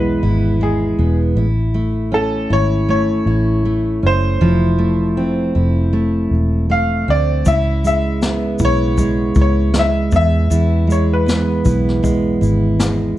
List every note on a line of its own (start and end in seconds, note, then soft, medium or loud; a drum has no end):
0.00 0.19 B1 medium
0.00 1.37 E2 medium
0.00 0.60 G#3 medium
0.00 0.97 B3 medium
0.00 0.22 E4 medium
0.00 0.57 B4 medium
0.23 0.95 G#1 medium
0.23 1.36 E4 medium
0.61 1.45 G#3 medium
0.61 1.17 G#4 medium
0.99 1.34 E1 medium
0.99 1.45 B3 soft
1.36 2.46 A1 medium
1.36 2.50 E4 medium
1.74 2.88 A3 medium
2.12 4.01 C#4 medium
2.12 2.53 A4 medium
2.50 3.23 G#1 medium
2.50 3.27 E4 medium
2.50 2.89 C#5 medium
2.88 3.65 A3 medium
2.88 4.07 C#5 medium
3.26 3.99 A1 medium
3.26 4.41 E4 medium
3.65 4.78 A3 medium
4.03 4.38 F#1 medium
4.03 4.50 C#4 soft
4.03 6.29 C5 medium
4.41 5.52 F1 medium
4.41 7.46 F3 medium
4.41 5.55 E4 medium
4.78 5.92 A3 medium
5.17 7.07 C4 medium
5.55 6.28 F1 medium
5.55 7.46 E4 medium
5.93 6.68 A3 medium
6.31 7.04 E1 medium
6.70 7.54 A3 medium
6.70 7.10 F5 medium
7.08 7.43 D2 medium
7.08 7.55 C4 medium
7.08 7.48 D5 medium
7.46 8.56 C#2 medium
7.46 10.21 C#3 medium
7.46 8.60 E4 medium
7.46 7.82 E5 medium
7.46 kick medium
7.46 shaker medium
7.84 8.98 G#3 medium
7.84 8.64 E5 medium
7.84 shaker soft
8.22 11.26 B3 medium
8.22 snare medium
8.22 shaker medium
8.59 9.33 B1 medium
8.59 9.36 E4 medium
8.59 kick medium
8.59 shaker soft
8.65 9.40 C#5 medium
8.98 9.73 G#3 soft
8.98 kick medium
8.98 shaker medium
9.35 10.09 C#2 medium
9.35 10.50 E4 medium
9.35 kick medium
9.35 shaker soft
9.41 9.78 C#5 medium
9.74 10.87 G#3 soft
9.74 snare loud
9.74 shaker medium
9.79 10.14 E5 medium
10.11 10.48 E2 medium
10.11 10.49 E2 medium
10.11 kick medium
10.11 shaker soft
10.16 10.93 E5 medium
10.50 13.19 E2 medium
10.50 11.62 E2 medium
10.50 11.64 E4 medium
10.50 shaker medium
10.87 12.01 G#3 medium
10.87 shaker soft
10.92 11.12 C#5 medium
11.13 11.84 B4 medium
11.26 13.16 B3 medium
11.26 snare loud
11.26 shaker medium
11.65 12.38 B1 medium
11.65 12.41 E4 medium
11.65 kick medium
11.65 shaker soft
11.88 snare soft
12.03 12.79 G#3 medium
12.03 kick medium
12.03 shaker medium
12.41 13.14 G#1 medium
12.41 13.19 E4 medium
12.41 shaker soft
12.80 13.19 G#3 medium
12.80 snare loud
12.80 shaker medium